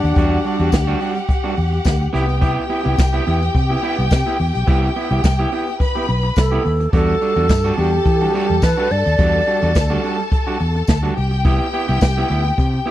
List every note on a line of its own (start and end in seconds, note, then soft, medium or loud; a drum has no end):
0.00 0.13 D#2 medium
0.00 0.97 D4 medium
0.00 2.09 G4 medium
0.00 2.09 F#5 medium
0.00 muted clean electric guitar stroke medium
0.00 closed hi-hat medium
0.16 0.37 E2 medium
0.16 0.38 G3 medium
0.16 0.38 D4 medium
0.16 0.38 F#4 medium
0.16 kick loud
0.16 closed hi-hat medium
0.45 0.59 G3 medium
0.45 0.59 D4 medium
0.45 0.58 F#4 medium
0.45 open hi-hat medium
0.59 0.69 E2 loud
0.59 0.71 G3 soft
0.59 0.72 D4 medium
0.59 0.72 F#4 medium
0.59 closed hi-hat soft
0.72 0.93 D2 loud
0.72 muted clean electric guitar stroke soft
0.72 kick medium
0.72 snare medium
0.72 closed hi-hat medium
0.72 tambourine loud
0.87 1.00 G3 medium
0.87 1.01 D4 medium
0.87 1.01 F#4 medium
1.00 1.18 G3 medium
1.00 1.15 D4 medium
1.00 1.15 F#4 medium
1.00 open hi-hat medium
1.16 muted clean electric guitar stroke soft
1.16 closed hi-hat soft
1.29 muted clean electric guitar stroke soft
1.29 kick loud
1.29 closed hi-hat medium
1.44 1.55 G3 medium
1.44 1.56 D4 medium
1.44 1.56 F#4 medium
1.57 1.78 E2 medium
1.57 open hi-hat medium
1.72 muted clean electric guitar stroke soft
1.72 closed hi-hat soft
1.85 2.06 D2 medium
1.85 muted clean electric guitar stroke soft
1.85 kick loud
1.85 snare medium
1.85 closed hi-hat soft
1.85 tambourine medium
2.00 muted clean electric guitar stroke soft
2.13 2.55 C2 medium
2.13 2.34 B3 medium
2.13 2.27 E4 medium
2.13 2.27 G4 loud
2.13 5.76 G4 medium
2.13 5.76 G5 medium
2.13 snare soft
2.13 open hi-hat medium
2.28 muted clean electric guitar stroke soft
2.28 closed hi-hat medium
2.41 2.63 B3 medium
2.41 2.63 E4 medium
2.41 2.63 G4 medium
2.41 kick loud
2.41 closed hi-hat medium
2.69 2.84 B3 medium
2.69 2.83 E4 medium
2.69 2.83 G4 medium
2.69 open hi-hat soft
2.84 2.95 C2 medium
2.84 2.97 B3 medium
2.84 2.97 E4 medium
2.84 2.97 G4 medium
2.84 closed hi-hat medium
2.98 3.19 C2 medium
2.98 muted clean electric guitar stroke soft
2.98 kick loud
2.98 snare loud
2.98 closed hi-hat medium
2.98 tambourine loud
3.13 3.25 B3 medium
3.13 3.26 E4 medium
3.13 3.26 G4 medium
3.26 3.48 E2 medium
3.26 3.43 B3 medium
3.26 3.41 E4 medium
3.26 3.40 G4 medium
3.26 open hi-hat medium
3.42 muted clean electric guitar stroke soft
3.42 closed hi-hat soft
3.55 3.75 C3 loud
3.55 muted clean electric guitar stroke soft
3.55 kick medium
3.55 closed hi-hat medium
3.69 3.81 B3 soft
3.69 3.82 E4 medium
3.69 3.82 G4 medium
3.82 4.04 B3 medium
3.82 3.98 E4 loud
3.82 3.97 G4 medium
3.82 open hi-hat medium
3.98 4.08 C2 medium
3.98 muted clean electric guitar stroke soft
3.98 closed hi-hat medium
4.11 4.22 C3 loud
4.11 muted clean electric guitar stroke soft
4.11 kick loud
4.11 snare medium
4.11 closed hi-hat medium
4.11 tambourine medium
4.26 4.38 B3 medium
4.26 4.38 E4 medium
4.26 4.39 G4 medium
4.39 4.51 E2 medium
4.39 open hi-hat medium
4.54 4.65 B1 medium
4.54 muted clean electric guitar stroke soft
4.54 closed hi-hat medium
4.67 4.88 C2 loud
4.67 4.88 B3 medium
4.67 4.89 E4 loud
4.67 4.89 G4 loud
4.67 kick loud
4.67 closed hi-hat medium
4.95 5.11 B3 medium
4.95 5.10 E4 medium
4.95 5.09 G4 medium
4.95 open hi-hat medium
5.11 5.20 C2 loud
5.11 5.22 B3 medium
5.11 5.23 E4 medium
5.11 5.23 G4 medium
5.11 closed hi-hat medium
5.24 5.45 C2 medium
5.24 muted clean electric guitar stroke soft
5.24 kick loud
5.24 snare loud
5.24 closed hi-hat medium
5.24 tambourine loud
5.39 5.51 B3 medium
5.39 5.51 E4 medium
5.39 5.52 G4 medium
5.52 5.69 B3 medium
5.52 5.67 E4 medium
5.52 5.66 G4 medium
5.52 open hi-hat medium
5.67 muted clean electric guitar stroke soft
5.67 closed hi-hat soft
5.80 6.63 B4 medium
5.80 6.63 B5 medium
5.80 muted clean electric guitar stroke soft
5.80 kick medium
5.80 closed hi-hat medium
5.95 6.07 B3 medium
5.95 6.07 E4 medium
5.95 6.08 G4 medium
6.08 6.29 B1 medium
6.08 muted clean electric guitar stroke soft
6.08 open hi-hat medium
6.23 muted clean electric guitar stroke soft
6.23 closed hi-hat soft
6.36 6.58 C2 medium
6.36 6.90 A4 medium
6.36 muted clean electric guitar stroke soft
6.36 kick medium
6.36 snare loud
6.36 closed hi-hat medium
6.36 tambourine medium
6.51 6.63 B3 medium
6.51 6.64 E4 medium
6.51 6.64 G4 medium
6.65 6.86 D#2 medium
6.65 muted clean electric guitar stroke soft
6.65 open hi-hat medium
6.80 muted clean electric guitar stroke soft
6.80 closed hi-hat medium
6.92 7.14 E2 loud
6.92 7.14 G3 medium
6.92 7.14 D4 medium
6.92 7.15 F#4 medium
6.92 11.12 A4 medium
6.92 7.74 A4 loud
6.92 11.12 A5 medium
6.92 kick loud
6.92 closed hi-hat medium
7.21 7.36 G3 medium
7.21 7.35 D4 medium
7.21 7.35 F#4 medium
7.21 open hi-hat medium
7.36 7.50 E2 medium
7.36 7.48 G3 soft
7.36 7.49 D4 medium
7.36 7.49 F#4 medium
7.36 closed hi-hat soft
7.49 7.70 G2 medium
7.49 kick loud
7.49 snare loud
7.49 closed hi-hat medium
7.49 tambourine loud
7.64 7.76 G3 medium
7.64 7.76 D4 medium
7.64 7.77 F#4 medium
7.77 7.98 E2 medium
7.77 7.94 G3 medium
7.77 7.92 D4 medium
7.77 7.91 F#4 medium
7.77 8.65 G4 medium
7.77 open hi-hat medium
7.92 muted clean electric guitar stroke soft
7.92 closed hi-hat soft
8.06 8.27 E3 loud
8.06 muted clean electric guitar stroke soft
8.06 kick loud
8.06 closed hi-hat medium
8.21 8.32 G3 soft
8.21 8.33 D4 medium
8.21 8.34 F#4 medium
8.34 8.55 G3 medium
8.34 8.48 D4 medium
8.34 8.48 F#4 loud
8.34 open hi-hat medium
8.49 8.59 E2 medium
8.49 muted clean electric guitar stroke soft
8.49 closed hi-hat soft
8.62 8.74 E3 medium
8.62 8.93 B4 loud
8.62 muted clean electric guitar stroke soft
8.62 kick loud
8.62 snare medium
8.62 closed hi-hat medium
8.62 tambourine loud
8.77 8.89 G3 medium
8.77 8.89 D4 medium
8.77 8.90 F#4 medium
8.90 9.02 G2 medium
8.90 10.04 D5 loud
8.90 muted clean electric guitar stroke soft
8.90 open hi-hat medium
9.05 9.16 D#2 medium
9.05 muted clean electric guitar stroke soft
9.05 closed hi-hat medium
9.19 9.40 E2 loud
9.19 9.40 G3 medium
9.19 9.40 D4 medium
9.19 9.40 F#4 medium
9.19 kick loud
9.19 closed hi-hat medium
9.47 9.61 G3 medium
9.47 9.61 D4 medium
9.47 9.60 F#4 medium
9.47 open hi-hat medium
9.61 9.72 E2 loud
9.61 9.73 G3 soft
9.61 9.74 D4 medium
9.61 9.74 F#4 medium
9.61 closed hi-hat soft
9.75 9.96 D2 medium
9.75 kick loud
9.75 snare medium
9.75 closed hi-hat medium
9.75 tambourine loud
9.90 10.02 G3 medium
9.90 10.03 D4 medium
9.90 10.03 F#4 medium
10.03 10.20 G3 medium
10.03 10.19 D4 medium
10.03 10.18 F#4 medium
10.03 open hi-hat medium
10.19 muted clean electric guitar stroke soft
10.19 closed hi-hat soft
10.32 muted clean electric guitar stroke soft
10.32 kick loud
10.32 closed hi-hat medium
10.47 10.59 G3 medium
10.47 10.59 D4 medium
10.47 10.59 F#4 medium
10.60 10.81 E2 medium
10.60 muted clean electric guitar stroke soft
10.60 open hi-hat medium
10.75 muted clean electric guitar stroke soft
10.75 closed hi-hat soft
10.87 11.09 D2 medium
10.87 muted clean electric guitar stroke soft
10.87 kick loud
10.87 snare loud
10.87 closed hi-hat medium
10.87 tambourine medium
11.03 11.16 G3 medium
11.03 11.16 D4 medium
11.03 11.17 F#4 medium
11.16 11.59 C2 medium
11.16 12.91 G4 medium
11.16 12.91 G5 medium
11.16 muted clean electric guitar stroke soft
11.16 open hi-hat medium
11.31 muted clean electric guitar stroke soft
11.31 closed hi-hat medium
11.45 11.66 B3 medium
11.45 11.66 E4 medium
11.45 11.67 G4 loud
11.45 kick loud
11.45 closed hi-hat medium
11.73 11.88 B3 medium
11.73 11.88 E4 medium
11.73 11.87 G4 medium
11.73 open hi-hat medium
11.88 11.98 C2 medium
11.88 12.01 B3 medium
11.88 12.01 E4 medium
11.88 12.01 G4 medium
11.88 closed hi-hat soft
12.01 12.22 C2 medium
12.01 kick loud
12.01 snare loud
12.01 closed hi-hat medium
12.01 tambourine medium
12.17 12.29 B3 medium
12.17 12.30 E4 medium
12.17 12.30 G4 medium
12.30 12.51 D2 medium
12.30 12.47 B3 medium
12.30 12.45 E4 medium
12.30 12.44 G4 medium
12.30 open hi-hat medium
12.45 muted clean electric guitar stroke soft
12.45 closed hi-hat soft
12.58 12.79 C3 loud
12.58 muted clean electric guitar stroke soft
12.58 kick loud
12.58 closed hi-hat medium
12.74 muted clean electric guitar stroke soft
12.86 12.91 B3 medium
12.86 12.91 E4 medium
12.86 12.91 G4 medium
12.86 open hi-hat medium